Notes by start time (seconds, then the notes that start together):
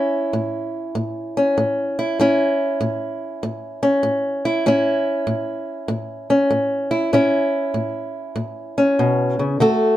Already playing: A2 C#4 E4
0.33 A2
0.95 A2
1.37 C#4
1.58 A2
1.99 E4
2.19 A2 C#4 E4
2.81 A2
3.43 A2
3.83 C#4
4.03 A2
4.45 E4
4.66 A2 C#4 E4
5.27 A2
5.88 A2
6.30 C#4
6.51 A2
6.91 E4
7.13 A2 C#4 E4
7.74 A2
8.36 A2
8.78 C#4
8.99 B2
9.39 C#3
9.60 D3 A3 F#4 A4